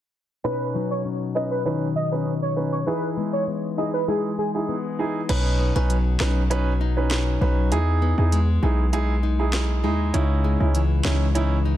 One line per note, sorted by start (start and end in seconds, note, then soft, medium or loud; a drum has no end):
0.44 2.87 B2 medium
0.44 1.00 C#4 medium
0.44 1.00 D#4 medium
0.44 0.67 B4 loud
0.44 1.01 B4 medium
0.75 2.93 F#3 medium
0.75 1.04 C#4 medium
0.75 1.95 D#4 medium
0.91 1.02 C#5 medium
1.05 2.25 C#4 medium
1.35 1.56 C#4 medium
1.35 1.56 D#4 medium
1.35 1.56 B4 medium
1.35 1.47 D#5 medium
1.51 1.62 B4 medium
1.65 2.86 D#3 medium
1.65 1.86 C#4 medium
1.65 1.86 D#4 medium
1.65 1.86 B4 loud
1.96 3.18 D#4 medium
1.96 2.08 D#5 medium
2.12 2.31 C#4 medium
2.12 2.31 D#4 medium
2.12 2.32 B4 medium
2.26 2.93 C#4 medium
2.42 2.53 C#5 medium
2.56 2.77 C#4 medium
2.56 2.77 D#4 medium
2.56 2.77 B4 medium
2.72 2.83 C#5 medium
2.86 5.29 E3 medium
2.86 3.43 D#4 medium
2.86 3.43 E4 medium
2.86 3.43 G#4 loud
2.86 3.09 B4 loud
3.17 4.07 G#3 medium
3.17 3.47 B3 medium
3.17 4.38 D#4 medium
3.33 3.44 C#5 medium
3.47 4.68 B3 medium
3.77 3.98 D#4 medium
3.77 3.98 E4 medium
3.77 3.99 G#4 medium
3.77 3.90 D#5 medium
3.94 4.04 B4 medium
4.08 5.36 G#3 medium
4.08 4.29 D#4 medium
4.08 4.29 E4 medium
4.08 4.20 G#4 medium
4.08 4.29 G#4 loud
4.38 5.79 D#4 medium
4.38 4.51 G#4 medium
4.54 4.74 D#4 medium
4.54 4.74 E4 medium
4.54 4.74 G#4 medium
4.69 5.59 B3 medium
4.99 5.19 D#4 medium
4.99 5.20 E4 medium
4.99 5.20 G#4 medium
5.29 5.72 B1 loud
5.29 7.72 B2 medium
5.29 5.72 C#4 medium
5.29 5.72 D#4 medium
5.29 5.72 B4 loud
5.29 closed hi-hat medium
5.29 crash loud
5.60 5.76 B3 medium
5.75 6.16 B1 loud
5.75 5.95 C#4 medium
5.75 6.19 C#4 medium
5.75 5.95 D#4 medium
5.75 5.95 B4 medium
5.90 6.49 F#3 medium
5.90 closed hi-hat medium
6.20 7.37 B1 medium
6.20 6.41 C#4 medium
6.20 7.78 C#4 medium
6.20 6.41 D#4 medium
6.20 6.41 B4 medium
6.20 snare loud
6.50 7.40 F#3 medium
6.50 6.71 C#4 medium
6.50 6.71 D#4 medium
6.50 6.71 B4 loud
6.50 closed hi-hat medium
6.81 9.23 D#4 medium
6.97 7.38 C#4 medium
6.97 7.38 D#4 medium
6.97 7.38 B4 medium
7.11 cross-stick medium
7.11 snare loud
7.11 closed hi-hat medium
7.41 7.73 B1 loud
7.41 7.78 F#3 medium
7.41 7.69 C#4 medium
7.41 7.69 D#4 medium
7.41 7.70 B4 medium
7.71 8.14 E2 loud
7.71 8.14 D#4 medium
7.71 8.14 E4 medium
7.71 8.14 G#4 loud
7.71 closed hi-hat medium
8.02 8.62 B3 medium
8.18 8.59 E2 medium
8.18 8.37 D#4 medium
8.18 8.38 E4 medium
8.18 8.38 G#4 medium
8.32 8.93 G#3 medium
8.32 closed hi-hat medium
8.62 9.85 B1 loud
8.62 10.21 B3 medium
8.62 8.83 D#4 medium
8.62 8.83 E4 medium
8.62 8.83 G#4 medium
8.93 9.83 G#3 medium
8.93 9.13 D#4 medium
8.93 9.14 E4 medium
8.93 9.14 G#4 loud
8.93 closed hi-hat medium
9.23 10.77 D#4 medium
9.39 9.80 D#4 medium
9.39 9.80 E4 medium
9.39 9.81 G#4 medium
9.53 cross-stick medium
9.53 snare loud
9.53 closed hi-hat medium
9.84 10.11 D#2 medium
9.84 10.44 G#3 medium
9.84 10.12 D#4 medium
9.84 10.12 E4 medium
9.84 10.12 G#4 medium
10.14 10.56 C#2 loud
10.14 11.77 C#3 medium
10.14 10.56 C#4 medium
10.14 10.57 D#4 medium
10.14 10.57 E4 loud
10.14 closed hi-hat medium
10.44 11.04 G#3 medium
10.60 11.01 C#2 loud
10.60 10.80 C#4 medium
10.60 10.80 D#4 medium
10.60 10.80 E4 medium
10.74 11.35 E3 medium
10.74 closed hi-hat medium
11.05 11.77 C#2 medium
11.05 11.77 G#3 medium
11.05 11.26 C#4 medium
11.05 11.26 D#4 medium
11.05 11.26 E4 medium
11.05 snare loud
11.35 11.77 E3 medium
11.35 11.56 C#4 medium
11.35 11.56 D#4 medium
11.35 11.56 E4 loud
11.35 closed hi-hat medium
11.65 11.77 D#4 medium